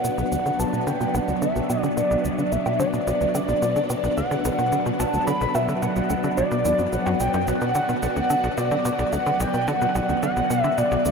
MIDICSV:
0, 0, Header, 1, 6, 480
1, 0, Start_track
1, 0, Key_signature, 2, "minor"
1, 0, Tempo, 550459
1, 759, Time_signature, 4, 2, 24, 8
1, 9691, End_track
2, 0, Start_track
2, 0, Title_t, "Analog synth lead"
2, 0, Program_c, 0, 81
2, 0, Note_on_c, 0, 78, 116
2, 518, Note_on_c, 0, 81, 104
2, 531, Note_off_c, 0, 78, 0
2, 758, Note_on_c, 0, 79, 104
2, 771, Note_off_c, 0, 81, 0
2, 999, Note_on_c, 0, 78, 101
2, 1012, Note_off_c, 0, 79, 0
2, 1233, Note_off_c, 0, 78, 0
2, 1239, Note_on_c, 0, 76, 99
2, 1587, Note_off_c, 0, 76, 0
2, 1587, Note_on_c, 0, 74, 99
2, 1685, Note_off_c, 0, 74, 0
2, 1718, Note_on_c, 0, 74, 108
2, 2198, Note_on_c, 0, 76, 94
2, 2211, Note_off_c, 0, 74, 0
2, 2433, Note_off_c, 0, 76, 0
2, 2438, Note_on_c, 0, 74, 122
2, 3604, Note_off_c, 0, 74, 0
2, 3637, Note_on_c, 0, 78, 114
2, 4355, Note_on_c, 0, 81, 106
2, 4368, Note_off_c, 0, 78, 0
2, 4588, Note_off_c, 0, 81, 0
2, 4593, Note_on_c, 0, 83, 118
2, 4836, Note_on_c, 0, 76, 103
2, 4850, Note_off_c, 0, 83, 0
2, 5072, Note_off_c, 0, 76, 0
2, 5077, Note_on_c, 0, 78, 107
2, 5524, Note_off_c, 0, 78, 0
2, 5556, Note_on_c, 0, 74, 115
2, 6036, Note_on_c, 0, 78, 99
2, 6049, Note_off_c, 0, 74, 0
2, 6278, Note_on_c, 0, 79, 107
2, 6291, Note_off_c, 0, 78, 0
2, 6517, Note_on_c, 0, 78, 111
2, 6530, Note_off_c, 0, 79, 0
2, 6990, Note_off_c, 0, 78, 0
2, 6996, Note_on_c, 0, 78, 108
2, 7476, Note_on_c, 0, 74, 104
2, 7489, Note_off_c, 0, 78, 0
2, 7956, Note_on_c, 0, 78, 92
2, 7969, Note_off_c, 0, 74, 0
2, 8197, Note_on_c, 0, 79, 106
2, 8210, Note_off_c, 0, 78, 0
2, 8436, Note_on_c, 0, 78, 105
2, 8449, Note_off_c, 0, 79, 0
2, 8912, Note_off_c, 0, 78, 0
2, 8917, Note_on_c, 0, 78, 100
2, 9266, Note_off_c, 0, 78, 0
2, 9266, Note_on_c, 0, 76, 100
2, 9397, Note_on_c, 0, 74, 104
2, 9410, Note_off_c, 0, 76, 0
2, 9691, Note_off_c, 0, 74, 0
2, 9691, End_track
3, 0, Start_track
3, 0, Title_t, "Synth texture"
3, 0, Program_c, 1, 99
3, 0, Note_on_c, 1, 74, 89
3, 9691, Note_off_c, 1, 74, 0
3, 9691, End_track
4, 0, Start_track
4, 0, Title_t, "String machine"
4, 0, Program_c, 2, 50
4, 0, Note_on_c, 2, 54, 80
4, 0, Note_on_c, 2, 59, 70
4, 0, Note_on_c, 2, 62, 88
4, 6509, Note_off_c, 2, 62, 0
4, 6518, Note_on_c, 2, 66, 88
4, 9691, Note_off_c, 2, 54, 0
4, 9691, Note_off_c, 2, 59, 0
4, 9691, Note_off_c, 2, 66, 0
4, 9691, End_track
5, 0, Start_track
5, 0, Title_t, "Analog synth bass"
5, 0, Program_c, 3, 38
5, 37, Note_on_c, 3, 47, 72
5, 83, Note_off_c, 3, 47, 0
5, 157, Note_on_c, 3, 35, 101
5, 203, Note_off_c, 3, 35, 0
5, 277, Note_on_c, 3, 38, 79
5, 323, Note_off_c, 3, 38, 0
5, 398, Note_on_c, 3, 50, 82
5, 443, Note_off_c, 3, 50, 0
5, 517, Note_on_c, 3, 35, 102
5, 563, Note_off_c, 3, 35, 0
5, 637, Note_on_c, 3, 47, 72
5, 750, Note_off_c, 3, 47, 0
5, 758, Note_on_c, 3, 50, 85
5, 803, Note_off_c, 3, 50, 0
5, 877, Note_on_c, 3, 47, 80
5, 923, Note_off_c, 3, 47, 0
5, 997, Note_on_c, 3, 35, 103
5, 1043, Note_off_c, 3, 35, 0
5, 1117, Note_on_c, 3, 38, 74
5, 1163, Note_off_c, 3, 38, 0
5, 1237, Note_on_c, 3, 50, 78
5, 1283, Note_off_c, 3, 50, 0
5, 1358, Note_on_c, 3, 35, 96
5, 1403, Note_off_c, 3, 35, 0
5, 1479, Note_on_c, 3, 47, 72
5, 1591, Note_off_c, 3, 47, 0
5, 1599, Note_on_c, 3, 50, 80
5, 1644, Note_off_c, 3, 50, 0
5, 1718, Note_on_c, 3, 47, 77
5, 1763, Note_off_c, 3, 47, 0
5, 1838, Note_on_c, 3, 35, 111
5, 1883, Note_off_c, 3, 35, 0
5, 1959, Note_on_c, 3, 38, 74
5, 2003, Note_off_c, 3, 38, 0
5, 2079, Note_on_c, 3, 50, 70
5, 2124, Note_off_c, 3, 50, 0
5, 2198, Note_on_c, 3, 35, 92
5, 2243, Note_off_c, 3, 35, 0
5, 2318, Note_on_c, 3, 47, 80
5, 2431, Note_off_c, 3, 47, 0
5, 2437, Note_on_c, 3, 50, 84
5, 2483, Note_off_c, 3, 50, 0
5, 2558, Note_on_c, 3, 47, 76
5, 2603, Note_off_c, 3, 47, 0
5, 2678, Note_on_c, 3, 35, 104
5, 2723, Note_off_c, 3, 35, 0
5, 2798, Note_on_c, 3, 38, 80
5, 2843, Note_off_c, 3, 38, 0
5, 2918, Note_on_c, 3, 50, 74
5, 2963, Note_off_c, 3, 50, 0
5, 3038, Note_on_c, 3, 35, 96
5, 3083, Note_off_c, 3, 35, 0
5, 3158, Note_on_c, 3, 47, 77
5, 3270, Note_off_c, 3, 47, 0
5, 3278, Note_on_c, 3, 50, 73
5, 3323, Note_off_c, 3, 50, 0
5, 3398, Note_on_c, 3, 47, 74
5, 3443, Note_off_c, 3, 47, 0
5, 3519, Note_on_c, 3, 35, 102
5, 3563, Note_off_c, 3, 35, 0
5, 3639, Note_on_c, 3, 38, 87
5, 3684, Note_off_c, 3, 38, 0
5, 3759, Note_on_c, 3, 50, 83
5, 3804, Note_off_c, 3, 50, 0
5, 3879, Note_on_c, 3, 35, 101
5, 3924, Note_off_c, 3, 35, 0
5, 3999, Note_on_c, 3, 47, 77
5, 4111, Note_off_c, 3, 47, 0
5, 4118, Note_on_c, 3, 50, 77
5, 4163, Note_off_c, 3, 50, 0
5, 4238, Note_on_c, 3, 47, 80
5, 4283, Note_off_c, 3, 47, 0
5, 4358, Note_on_c, 3, 35, 110
5, 4403, Note_off_c, 3, 35, 0
5, 4478, Note_on_c, 3, 38, 69
5, 4523, Note_off_c, 3, 38, 0
5, 4598, Note_on_c, 3, 50, 84
5, 4643, Note_off_c, 3, 50, 0
5, 4718, Note_on_c, 3, 35, 104
5, 4763, Note_off_c, 3, 35, 0
5, 4838, Note_on_c, 3, 47, 76
5, 4951, Note_off_c, 3, 47, 0
5, 4957, Note_on_c, 3, 50, 74
5, 5003, Note_off_c, 3, 50, 0
5, 5078, Note_on_c, 3, 47, 79
5, 5123, Note_off_c, 3, 47, 0
5, 5199, Note_on_c, 3, 35, 95
5, 5243, Note_off_c, 3, 35, 0
5, 5319, Note_on_c, 3, 38, 74
5, 5364, Note_off_c, 3, 38, 0
5, 5440, Note_on_c, 3, 50, 73
5, 5484, Note_off_c, 3, 50, 0
5, 5561, Note_on_c, 3, 35, 99
5, 5605, Note_off_c, 3, 35, 0
5, 5681, Note_on_c, 3, 47, 80
5, 5792, Note_off_c, 3, 47, 0
5, 5800, Note_on_c, 3, 40, 75
5, 5874, Note_off_c, 3, 40, 0
5, 5919, Note_on_c, 3, 42, 71
5, 5994, Note_off_c, 3, 42, 0
5, 6040, Note_on_c, 3, 35, 81
5, 6084, Note_off_c, 3, 35, 0
5, 6160, Note_on_c, 3, 42, 103
5, 6234, Note_off_c, 3, 42, 0
5, 6280, Note_on_c, 3, 35, 83
5, 6354, Note_off_c, 3, 35, 0
5, 6400, Note_on_c, 3, 42, 96
5, 6512, Note_off_c, 3, 42, 0
5, 6521, Note_on_c, 3, 35, 102
5, 6565, Note_off_c, 3, 35, 0
5, 6640, Note_on_c, 3, 47, 75
5, 6752, Note_off_c, 3, 47, 0
5, 6760, Note_on_c, 3, 50, 79
5, 6804, Note_off_c, 3, 50, 0
5, 6879, Note_on_c, 3, 47, 75
5, 6924, Note_off_c, 3, 47, 0
5, 6999, Note_on_c, 3, 35, 99
5, 7043, Note_off_c, 3, 35, 0
5, 7118, Note_on_c, 3, 38, 76
5, 7163, Note_off_c, 3, 38, 0
5, 7238, Note_on_c, 3, 50, 73
5, 7283, Note_off_c, 3, 50, 0
5, 7357, Note_on_c, 3, 35, 97
5, 7403, Note_off_c, 3, 35, 0
5, 7478, Note_on_c, 3, 47, 84
5, 7590, Note_off_c, 3, 47, 0
5, 7598, Note_on_c, 3, 50, 78
5, 7643, Note_off_c, 3, 50, 0
5, 7718, Note_on_c, 3, 47, 74
5, 7763, Note_off_c, 3, 47, 0
5, 7838, Note_on_c, 3, 35, 101
5, 7883, Note_off_c, 3, 35, 0
5, 7957, Note_on_c, 3, 38, 82
5, 8003, Note_off_c, 3, 38, 0
5, 8078, Note_on_c, 3, 50, 78
5, 8123, Note_off_c, 3, 50, 0
5, 8197, Note_on_c, 3, 35, 103
5, 8243, Note_off_c, 3, 35, 0
5, 8318, Note_on_c, 3, 47, 70
5, 8430, Note_off_c, 3, 47, 0
5, 8439, Note_on_c, 3, 50, 85
5, 8483, Note_off_c, 3, 50, 0
5, 8559, Note_on_c, 3, 47, 79
5, 8604, Note_off_c, 3, 47, 0
5, 8678, Note_on_c, 3, 35, 99
5, 8723, Note_off_c, 3, 35, 0
5, 8799, Note_on_c, 3, 38, 76
5, 8844, Note_off_c, 3, 38, 0
5, 8919, Note_on_c, 3, 50, 77
5, 8964, Note_off_c, 3, 50, 0
5, 9039, Note_on_c, 3, 35, 93
5, 9084, Note_off_c, 3, 35, 0
5, 9158, Note_on_c, 3, 47, 74
5, 9271, Note_off_c, 3, 47, 0
5, 9279, Note_on_c, 3, 50, 80
5, 9324, Note_off_c, 3, 50, 0
5, 9399, Note_on_c, 3, 47, 83
5, 9443, Note_off_c, 3, 47, 0
5, 9518, Note_on_c, 3, 35, 107
5, 9563, Note_off_c, 3, 35, 0
5, 9639, Note_on_c, 3, 38, 75
5, 9683, Note_off_c, 3, 38, 0
5, 9691, End_track
6, 0, Start_track
6, 0, Title_t, "Drums"
6, 39, Note_on_c, 9, 82, 96
6, 126, Note_off_c, 9, 82, 0
6, 159, Note_on_c, 9, 82, 39
6, 246, Note_off_c, 9, 82, 0
6, 279, Note_on_c, 9, 82, 65
6, 366, Note_off_c, 9, 82, 0
6, 401, Note_on_c, 9, 82, 36
6, 488, Note_off_c, 9, 82, 0
6, 520, Note_on_c, 9, 82, 93
6, 607, Note_off_c, 9, 82, 0
6, 640, Note_on_c, 9, 82, 41
6, 728, Note_off_c, 9, 82, 0
6, 759, Note_on_c, 9, 82, 63
6, 847, Note_off_c, 9, 82, 0
6, 879, Note_on_c, 9, 82, 40
6, 966, Note_off_c, 9, 82, 0
6, 1000, Note_on_c, 9, 77, 56
6, 1000, Note_on_c, 9, 82, 97
6, 1087, Note_off_c, 9, 77, 0
6, 1087, Note_off_c, 9, 82, 0
6, 1119, Note_on_c, 9, 82, 39
6, 1206, Note_off_c, 9, 82, 0
6, 1239, Note_on_c, 9, 82, 71
6, 1326, Note_off_c, 9, 82, 0
6, 1359, Note_on_c, 9, 82, 40
6, 1447, Note_off_c, 9, 82, 0
6, 1480, Note_on_c, 9, 77, 52
6, 1480, Note_on_c, 9, 82, 90
6, 1567, Note_off_c, 9, 77, 0
6, 1567, Note_off_c, 9, 82, 0
6, 1600, Note_on_c, 9, 82, 39
6, 1687, Note_off_c, 9, 82, 0
6, 1721, Note_on_c, 9, 82, 68
6, 1808, Note_off_c, 9, 82, 0
6, 1841, Note_on_c, 9, 82, 39
6, 1928, Note_off_c, 9, 82, 0
6, 1960, Note_on_c, 9, 82, 103
6, 2047, Note_off_c, 9, 82, 0
6, 2080, Note_on_c, 9, 82, 40
6, 2167, Note_off_c, 9, 82, 0
6, 2199, Note_on_c, 9, 82, 69
6, 2286, Note_off_c, 9, 82, 0
6, 2320, Note_on_c, 9, 77, 76
6, 2320, Note_on_c, 9, 82, 38
6, 2407, Note_off_c, 9, 77, 0
6, 2407, Note_off_c, 9, 82, 0
6, 2439, Note_on_c, 9, 82, 103
6, 2527, Note_off_c, 9, 82, 0
6, 2559, Note_on_c, 9, 82, 41
6, 2646, Note_off_c, 9, 82, 0
6, 2680, Note_on_c, 9, 82, 66
6, 2767, Note_off_c, 9, 82, 0
6, 2800, Note_on_c, 9, 82, 41
6, 2887, Note_off_c, 9, 82, 0
6, 2920, Note_on_c, 9, 77, 54
6, 2920, Note_on_c, 9, 82, 101
6, 3007, Note_off_c, 9, 77, 0
6, 3007, Note_off_c, 9, 82, 0
6, 3040, Note_on_c, 9, 82, 41
6, 3127, Note_off_c, 9, 82, 0
6, 3160, Note_on_c, 9, 82, 70
6, 3247, Note_off_c, 9, 82, 0
6, 3279, Note_on_c, 9, 82, 43
6, 3367, Note_off_c, 9, 82, 0
6, 3399, Note_on_c, 9, 77, 49
6, 3399, Note_on_c, 9, 82, 99
6, 3487, Note_off_c, 9, 77, 0
6, 3487, Note_off_c, 9, 82, 0
6, 3520, Note_on_c, 9, 82, 40
6, 3607, Note_off_c, 9, 82, 0
6, 3640, Note_on_c, 9, 82, 68
6, 3727, Note_off_c, 9, 82, 0
6, 3760, Note_on_c, 9, 82, 39
6, 3847, Note_off_c, 9, 82, 0
6, 3879, Note_on_c, 9, 82, 104
6, 3967, Note_off_c, 9, 82, 0
6, 4000, Note_on_c, 9, 82, 40
6, 4087, Note_off_c, 9, 82, 0
6, 4118, Note_on_c, 9, 82, 72
6, 4206, Note_off_c, 9, 82, 0
6, 4239, Note_on_c, 9, 82, 40
6, 4326, Note_off_c, 9, 82, 0
6, 4359, Note_on_c, 9, 82, 100
6, 4446, Note_off_c, 9, 82, 0
6, 4478, Note_on_c, 9, 82, 42
6, 4565, Note_off_c, 9, 82, 0
6, 4598, Note_on_c, 9, 82, 68
6, 4685, Note_off_c, 9, 82, 0
6, 4718, Note_on_c, 9, 82, 41
6, 4805, Note_off_c, 9, 82, 0
6, 4838, Note_on_c, 9, 77, 54
6, 4838, Note_on_c, 9, 82, 100
6, 4925, Note_off_c, 9, 77, 0
6, 4925, Note_off_c, 9, 82, 0
6, 4958, Note_on_c, 9, 82, 38
6, 5045, Note_off_c, 9, 82, 0
6, 5079, Note_on_c, 9, 82, 73
6, 5166, Note_off_c, 9, 82, 0
6, 5198, Note_on_c, 9, 82, 43
6, 5285, Note_off_c, 9, 82, 0
6, 5318, Note_on_c, 9, 77, 49
6, 5318, Note_on_c, 9, 82, 93
6, 5405, Note_off_c, 9, 77, 0
6, 5405, Note_off_c, 9, 82, 0
6, 5438, Note_on_c, 9, 82, 39
6, 5525, Note_off_c, 9, 82, 0
6, 5558, Note_on_c, 9, 82, 69
6, 5646, Note_off_c, 9, 82, 0
6, 5680, Note_on_c, 9, 82, 40
6, 5767, Note_off_c, 9, 82, 0
6, 5799, Note_on_c, 9, 82, 101
6, 5886, Note_off_c, 9, 82, 0
6, 5918, Note_on_c, 9, 82, 39
6, 6006, Note_off_c, 9, 82, 0
6, 6039, Note_on_c, 9, 82, 68
6, 6126, Note_off_c, 9, 82, 0
6, 6158, Note_on_c, 9, 77, 74
6, 6158, Note_on_c, 9, 82, 39
6, 6246, Note_off_c, 9, 77, 0
6, 6246, Note_off_c, 9, 82, 0
6, 6278, Note_on_c, 9, 82, 98
6, 6365, Note_off_c, 9, 82, 0
6, 6397, Note_on_c, 9, 82, 41
6, 6484, Note_off_c, 9, 82, 0
6, 6518, Note_on_c, 9, 82, 68
6, 6605, Note_off_c, 9, 82, 0
6, 6637, Note_on_c, 9, 82, 39
6, 6725, Note_off_c, 9, 82, 0
6, 6757, Note_on_c, 9, 77, 51
6, 6757, Note_on_c, 9, 82, 94
6, 6844, Note_off_c, 9, 77, 0
6, 6844, Note_off_c, 9, 82, 0
6, 6877, Note_on_c, 9, 82, 39
6, 6964, Note_off_c, 9, 82, 0
6, 6998, Note_on_c, 9, 82, 66
6, 7085, Note_off_c, 9, 82, 0
6, 7118, Note_on_c, 9, 82, 39
6, 7205, Note_off_c, 9, 82, 0
6, 7238, Note_on_c, 9, 77, 50
6, 7238, Note_on_c, 9, 82, 90
6, 7325, Note_off_c, 9, 77, 0
6, 7325, Note_off_c, 9, 82, 0
6, 7358, Note_on_c, 9, 82, 37
6, 7445, Note_off_c, 9, 82, 0
6, 7478, Note_on_c, 9, 82, 67
6, 7565, Note_off_c, 9, 82, 0
6, 7598, Note_on_c, 9, 82, 39
6, 7685, Note_off_c, 9, 82, 0
6, 7718, Note_on_c, 9, 82, 98
6, 7805, Note_off_c, 9, 82, 0
6, 7838, Note_on_c, 9, 82, 37
6, 7925, Note_off_c, 9, 82, 0
6, 7958, Note_on_c, 9, 82, 66
6, 8045, Note_off_c, 9, 82, 0
6, 8078, Note_on_c, 9, 82, 39
6, 8165, Note_off_c, 9, 82, 0
6, 8197, Note_on_c, 9, 82, 96
6, 8285, Note_off_c, 9, 82, 0
6, 8317, Note_on_c, 9, 82, 40
6, 8404, Note_off_c, 9, 82, 0
6, 8437, Note_on_c, 9, 82, 63
6, 8524, Note_off_c, 9, 82, 0
6, 8558, Note_on_c, 9, 82, 41
6, 8645, Note_off_c, 9, 82, 0
6, 8678, Note_on_c, 9, 77, 51
6, 8678, Note_on_c, 9, 82, 90
6, 8766, Note_off_c, 9, 77, 0
6, 8766, Note_off_c, 9, 82, 0
6, 8799, Note_on_c, 9, 82, 38
6, 8886, Note_off_c, 9, 82, 0
6, 8918, Note_on_c, 9, 82, 67
6, 9005, Note_off_c, 9, 82, 0
6, 9038, Note_on_c, 9, 82, 38
6, 9125, Note_off_c, 9, 82, 0
6, 9158, Note_on_c, 9, 77, 46
6, 9158, Note_on_c, 9, 82, 88
6, 9246, Note_off_c, 9, 77, 0
6, 9246, Note_off_c, 9, 82, 0
6, 9278, Note_on_c, 9, 82, 36
6, 9365, Note_off_c, 9, 82, 0
6, 9398, Note_on_c, 9, 82, 62
6, 9486, Note_off_c, 9, 82, 0
6, 9519, Note_on_c, 9, 82, 38
6, 9606, Note_off_c, 9, 82, 0
6, 9639, Note_on_c, 9, 82, 99
6, 9691, Note_off_c, 9, 82, 0
6, 9691, End_track
0, 0, End_of_file